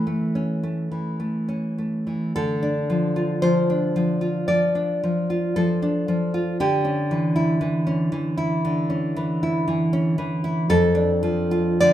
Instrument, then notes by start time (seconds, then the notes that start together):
nylon-string guitar
Already playing: E3 C#4 A4
0.07 A3
0.35 C#4
0.63 A3
0.91 E3
1.20 A3
1.48 C#4
1.78 A3
2.07 E3
2.36 D3 A4
2.63 D4
2.90 F3
3.16 F4
3.42 F3 C5
3.70 D4
3.96 F3
4.21 F4
4.48 F3 D5
4.75 D4
5.04 F3
5.30 F4
5.56 F3 A4
5.82 D4
6.08 F3
6.34 F4
6.60 D3 G4
6.85 C#4
7.11 E3
7.36 E4
7.61 E3
7.87 C#4
8.12 E3
8.38 E4
8.65 D3
8.90 C#4
9.16 E3
9.43 E4
9.68 E3
9.93 C#4
10.18 E3
10.44 E4
10.70 F2 A4
10.95 D4
11.23 F3
11.51 F4
11.80 D3 D5